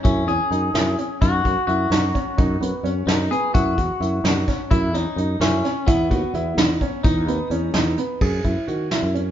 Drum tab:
CC |-----|-----|-----|-----|
HH |xxxxx|xxxxx|xxxxx|xxxxx|
SD |---o-|---o-|---o-|---oo|
BD |o----|oo--o|o----|oo--o|

CC |-----|-----|-----|x----|
HH |xxxxx|xxxxx|xxxxx|-xxxx|
SD |-o-oo|---o-|---o-|---o-|
BD |o----|oo--o|o----|oo---|